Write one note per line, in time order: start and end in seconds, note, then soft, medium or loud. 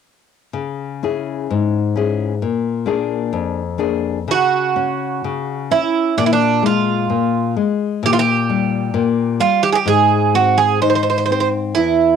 0.53 1.47 C#3 soft
1.03 1.78 C#4 soft
1.03 1.78 E4 soft
1.03 1.79 G#4 soft
1.51 2.39 G#2 soft
1.96 2.32 C#4 soft
1.96 2.33 E4 soft
1.96 2.33 G#4 soft
2.42 3.30 A#2 medium
2.86 3.61 A#3 soft
2.86 3.61 D4 soft
2.86 3.61 G#4 soft
3.33 4.25 F2 soft
3.78 4.18 A#3 soft
3.78 4.18 D4 soft
3.78 4.18 G#4 soft
4.28 5.23 C#3 soft
4.28 5.71 F#4 medium
4.76 5.22 C#4 soft
5.24 5.69 C#3 soft
5.71 6.16 C#4 soft
5.71 6.17 E4 medium
6.17 7.08 A#2 medium
6.17 6.24 D4 medium
6.26 6.32 E4 medium
6.33 6.66 D4 medium
6.63 7.08 G#3 soft
6.63 7.54 F4 medium
7.10 7.55 A#2 soft
7.57 8.02 G#3 soft
8.03 8.93 A#2 medium
8.03 8.11 G4 medium
8.13 8.18 F4 medium
8.19 9.44 G4 medium
8.50 8.93 G3 soft
8.94 9.38 A#2 medium
9.40 9.84 G3 soft
9.40 9.61 F4 medium
9.63 9.68 G4 medium
9.73 9.87 G4 medium
9.73 9.76 G#4 medium
9.86 11.72 G#2 medium
9.86 10.35 G#4 medium
10.34 10.80 C4 soft
10.34 10.58 F#4 medium
10.58 10.81 G#4 medium
10.82 11.27 D#4 soft
10.82 10.88 C5 medium
10.90 10.94 C5 medium
10.95 11.02 C5 medium
11.03 11.09 C5 soft
11.10 11.17 C5 medium
11.18 11.24 C5 soft
11.26 11.31 C5 medium
11.30 11.76 C4 soft
11.30 11.39 C5 soft
11.40 11.47 C5 medium
11.75 12.16 E2 medium
11.75 12.16 E4 medium